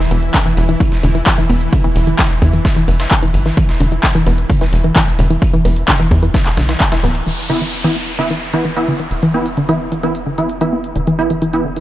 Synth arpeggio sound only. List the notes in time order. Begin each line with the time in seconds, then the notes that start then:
0.00 E3
0.11 B3
0.34 D3
0.46 E3
0.69 E3
0.80 E3
1.03 D3
1.15 E3
1.38 E3
1.49 B3
1.73 D3
1.84 E3
2.07 E3
2.19 E3
2.42 D3
2.53 E3
2.76 E3
2.88 B3
3.11 D3
3.23 E3
3.46 E3
3.57 E3
3.80 D3
3.92 E3
4.15 E3
4.27 B3
4.50 D3
4.61 E3
4.84 E3
4.96 E3
5.19 D3
5.30 E3
5.54 E3
5.65 B3
5.88 D3
6.00 E3
6.23 E3
6.34 E3
6.57 D3
6.69 E3
6.92 E3
7.04 B3
7.27 E3
7.50 D3
7.61 E3
7.84 E3
7.96 B3
8.19 D3
8.31 E3
8.54 E3
8.65 E3
8.88 D3
9.00 E3
9.23 E3
9.34 B3
9.57 D3
9.69 E3
9.92 E3
10.04 E3
10.27 D3
10.38 E3
10.61 E3
10.73 B3
10.96 D3
11.07 E3
11.30 E3
11.42 E3
11.65 D3
11.77 E3